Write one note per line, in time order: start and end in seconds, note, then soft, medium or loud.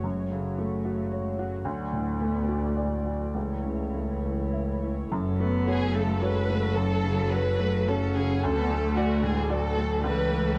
0.00 1.68 F#1 soft
0.00 1.61 F#2 soft
0.00 3.31 A3 soft
0.00 0.20 F#4 soft
0.00 3.31 F#4 medium
0.00 1.62 C#5 soft
0.05 0.33 G#3 soft
0.31 0.75 C#3 soft
0.31 0.60 F#3 soft
0.58 1.02 A3 soft
0.58 1.12 A3 soft
0.85 1.28 F#4 soft
1.12 1.40 G#3 medium
1.12 1.55 C#5 soft
1.39 1.64 F#3 medium
1.39 1.66 F#4 soft
1.65 3.30 D2 medium
1.65 3.36 D2 medium
1.65 2.21 F#3 soft
1.65 3.35 D5 medium
1.93 2.37 A2 soft
2.20 2.65 A3 soft
2.20 2.49 B3 soft
2.48 2.76 A3 soft
2.48 2.93 F#4 soft
2.75 3.06 G#3 soft
2.75 3.23 D5 soft
3.04 3.34 F#3 soft
3.04 3.35 F#4 soft
3.35 5.11 C#2 soft
3.35 5.07 C#2 soft
3.35 4.88 E3 soft
3.35 5.08 A3 medium
3.35 5.11 E4 soft
3.35 5.10 C#5 medium
3.65 4.12 C#3 soft
3.95 4.42 A3 soft
4.26 4.72 E4 soft
4.53 5.00 E5 soft
4.82 5.11 E4 soft
5.11 8.45 F#1 medium
5.11 6.72 F#2 medium
5.11 10.00 F#3 medium
5.11 10.00 F#4 medium
5.11 8.39 A4 medium
5.11 8.39 C#5 medium
5.38 5.84 A3 medium
5.38 5.96 B3 medium
5.67 5.92 F#4 medium
5.67 5.93 G#4 medium
5.67 5.92 C#5 medium
5.95 6.38 C#3 soft
5.95 6.22 A3 medium
5.95 6.22 A4 medium
6.21 6.75 G#3 medium
6.21 6.46 F#4 medium
6.21 6.76 B4 medium
6.21 6.46 C#5 medium
6.50 6.93 A3 medium
6.76 8.39 F#2 medium
6.76 7.90 F#3 loud
6.76 7.31 A4 medium
7.04 7.48 C#3 medium
7.31 7.57 F#4 medium
7.31 7.88 B4 medium
7.31 7.57 C#5 medium
7.59 8.05 A3 medium
7.88 8.59 C#4 medium
7.88 8.13 F#4 medium
7.88 8.16 A4 medium
7.88 8.13 C#5 medium
8.15 8.43 C#3 medium
8.15 8.42 G#4 medium
8.43 10.06 D2 medium
8.43 10.01 D2 medium
8.43 8.97 A4 medium
8.43 10.58 A4 medium
8.43 10.04 D5 medium
8.58 8.71 B3 medium
8.70 9.24 A3 loud
8.70 9.13 A3 medium
8.96 9.23 F#4 medium
8.96 9.21 F#4 medium
8.96 9.21 D5 medium
9.23 9.66 A2 medium
9.23 9.51 G#3 medium
9.23 9.50 G#4 medium
9.49 10.02 F#3 medium
9.49 9.74 F#4 medium
9.49 10.05 A4 medium
9.49 9.75 D5 medium
9.77 10.04 A3 medium
10.03 10.58 C#2 medium
10.03 10.58 E3 loud
10.03 10.58 A3 medium
10.03 10.58 A4 medium
10.03 10.58 B4 medium
10.03 10.58 C#5 medium
10.32 10.58 A3 medium